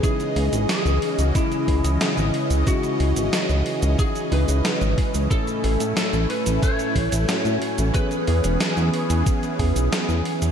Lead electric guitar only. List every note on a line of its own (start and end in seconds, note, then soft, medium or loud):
0.04 0.69 G#4 loud
0.70 1.21 G#4 loud
1.21 1.38 F#4 loud
1.36 2.67 E4 loud
2.68 3.95 F#4 loud
3.99 4.32 G#4 loud
4.33 5.31 B4 loud
5.31 5.93 A4 loud
5.97 6.30 A4 loud
6.30 6.64 B4 loud
6.63 7.99 C#5 loud
7.95 9.88 B4 loud